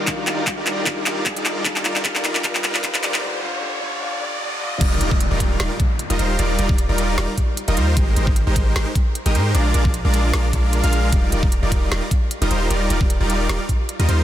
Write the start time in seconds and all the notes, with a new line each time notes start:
Already playing: D#3 G3 D4 F4, riser
0.05 D#3 G3 D4 D#4 F4 A#4 D5, kick, clap, closed hi-hat
0.09 F4
0.27 G3 D#4 F4 A#4 D5, clap, closed hi-hat
0.47 kick, clap, closed hi-hat
0.57 G3 D#4 F4 A#4 D5
0.67 clap, closed hi-hat
0.84 D#3 G3 D4 D#4 F4 A#4 D5, kick, clap, closed hi-hat
0.88 F4
1.06 G3 D#4 F4 A#4 D5, clap, closed hi-hat
1.26 kick, clap, closed hi-hat
1.36 G3 D#4 F4 A#4 D5, closed hi-hat
1.45 clap, closed hi-hat
1.63 D#3 G3 D4 D#4 F4 A#4 D5, kick, clap, closed hi-hat
1.67 F4
1.76 clap
1.85 G3 D#4 F4 A#4 D5, clap, closed hi-hat
1.96 clap
2.03 D#3 G3 D4 D#4 F4 A#4 D5, kick, clap, closed hi-hat
2.15 clap
2.24 G3 D#4 F4 A#4 D5, clap, closed hi-hat
2.35 clap
2.42 D#3 G3 D4 D#4 F4 A#4 D5, kick, clap, closed hi-hat
2.55 clap
2.64 G3 D#4 F4 A#4 D5, clap, closed hi-hat
2.75 clap
2.82 D#3 G3 D4 D#4 F4 A#4 D5, kick, clap, closed hi-hat
2.94 clap, closed hi-hat
3.03 G3 D#4 F4 A#4 D5, clap, closed hi-hat
3.14 clap
3.21 D3 G3 D4 F4
3.41 D3 G3 D4 F4
3.61 D3 G3 D4
3.65 F4
3.80 D3 G3 D4 F4
4.00 D3 G3 D4 F4
4.20 D3 G3 D4
4.24 F4
4.39 D3 G3 D4 F4
4.59 D3 G3 D4 F4
4.81 D#1 G3 D#4 F4 A#4 D5, kick, closed hi-hat, crash, downlifter
5.01 D#1 G3 D#4 F4 A#4 D5, closed hi-hat
5.11 kick
5.20 closed hi-hat
5.31 D#1 G3 D#4 F4 A#4 D5
5.40 kick, closed hi-hat
5.60 D#1 G3 D#4 F4 A#4 D5, snare, closed hi-hat
5.80 kick, closed hi-hat
5.99 closed hi-hat
6.10 D#1 G3 D#4 F4 A#4 D#5, closed hi-hat
6.19 D#1 G3 D#4 F4 A#4 C5, closed hi-hat
6.39 D#1 G3 D#4 F4 A#4 D5, closed hi-hat
6.59 D#1 G3 D#4 F4 A#4 D5, closed hi-hat
6.69 kick
6.78 closed hi-hat
6.89 D#1 G3 D#4 F4 A#4 D5
6.98 closed hi-hat
7.18 D#1 G3 D#4 F4 A#4 D5, snare, closed hi-hat
7.38 kick, closed hi-hat
7.57 closed hi-hat
7.68 D#1 G3 D#4 F4 A#4 D#5, closed hi-hat
7.77 D#2 G3 D#4 F4 A#4 C5, closed hi-hat
7.97 G#1 G#3 D#4 G4 A#4 C5, kick, closed hi-hat
8.16 G#1 G#3 D#4 G4 A#4 C5, closed hi-hat
8.27 kick
8.36 closed hi-hat
8.47 G#1 G#3 D#4 G4 A#4 C5
8.56 kick, closed hi-hat
8.76 G#1 G#3 D#4 G4 A#4 C5, snare, closed hi-hat
8.95 kick, closed hi-hat
9.15 closed hi-hat
9.26 G#1 G#3 D#4 G4 A#4 D#5, closed hi-hat
9.35 G#2 G#3 D#4 G4 A#4 C5, closed hi-hat
9.54 A#1 G#3 D4 F4 A#4 D5, closed hi-hat
9.74 A#1 G#3 D4 F4 A#4 D5, closed hi-hat
9.85 kick
9.94 closed hi-hat
10.05 A#1 G#3 D4 F4 A#4 D5
10.14 closed hi-hat
10.34 A#1 G#3 D4 F4 A#4 D5, snare, closed hi-hat
10.53 A#1 G#3 D4 F4 A#4 D5, kick, closed hi-hat
10.73 closed hi-hat
10.84 A#1 G#3 D4 F4 A#4 F5, closed hi-hat
10.93 closed hi-hat
11.12 D#1 G3 D#4 F4 A#4 D5, kick, closed hi-hat
11.32 D#1 G3 D#4 F4 A#4 D5, closed hi-hat
11.43 kick
11.52 closed hi-hat
11.63 D#1 G3 D#4 F4 A#4 D5
11.72 kick, closed hi-hat
11.91 D#1 G3 D#4 F4 A#4 D5, snare, closed hi-hat
12.11 kick, closed hi-hat
12.31 closed hi-hat
12.41 D#1 G3 D#4 F4 A#4 D#5, closed hi-hat
12.51 D#1 G3 D#4 F4 A#4 C5, closed hi-hat
12.70 D#1 G3 D#4 F4 A#4 D5, closed hi-hat
12.90 D#1 G3 D#4 F4 A#4 D5, closed hi-hat
13.01 kick
13.10 closed hi-hat
13.20 D#1 G3 D#4 F4 A#4 D5
13.30 closed hi-hat
13.49 D#1 G3 D#4 F4 A#4 D5, snare, closed hi-hat
13.69 kick, closed hi-hat
13.89 closed hi-hat
13.99 D#2 G3 D#4 F4 A#4 D#5, closed hi-hat
14.08 D#2 G3 D#4 F4 A#4 C5, closed hi-hat